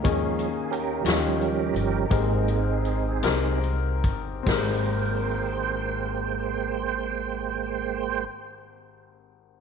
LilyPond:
<<
  \new Staff \with { instrumentName = "Upright piano" } { \time 6/8 \key aes \major \tempo 4. = 46 <bes des' ees' aes'>4 r8 <des' ees' f' g'>4 r8 | <c' g' aes' bes'>4 r8 <c' g' aes' bes'>4 r8 | <c' g' aes' bes'>2.~ | <c' g' aes' bes'>2. | }
  \new Staff \with { instrumentName = "Upright piano" } { \clef bass \time 6/8 \key aes \major ees4. ees4. | aes,4. r4. | aes,,2.~ | aes,,2. | }
  \new Staff \with { instrumentName = "Tonewheel organ" } { \time 6/8 \key aes \major <des' aes'>4 <des' g' bes'>4 <des' g' bes'>4 | <ees' aes'>2 r4 | <aes bes c'' g''>2.~ | <aes bes c'' g''>2. | }
  \new Staff \with { instrumentName = "Tonewheel organ" } { \clef bass \time 6/8 \key aes \major <f aes>8 r4 <f g des'>4. | <aes bes c'>8 r2 r8 | r2. | r2. | }
  \new Staff \with { instrumentName = "Upright bass" } { \clef bass \time 6/8 \key aes \major ees,4. ees,4 g,,8 | aes,,4. c,4 g,,8 | aes,,2.~ | aes,,2. | }
  \new DrumStaff \with { instrumentName = "Drums" } \drummode { \time 6/8 <hh bd>8 hh8 hh8 <hh sn>8 hh8 hh8 | <hh bd>8 hh8 hh8 <hh sn>8 hh8 <hh bd>8 | <hho bd sn>4. r4. | r4. r4. | }
>>